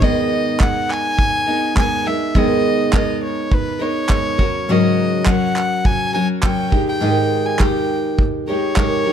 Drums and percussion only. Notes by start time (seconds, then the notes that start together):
0.02 kick
0.60 kick, clap
0.90 clap
1.19 kick
1.77 kick, clap
2.35 kick
2.93 kick, clap
3.52 kick
4.09 kick, clap
4.39 kick
5.26 kick, clap
5.56 clap
5.85 kick
6.43 kick, clap
6.72 kick
7.59 kick, clap
8.19 kick
8.76 kick, clap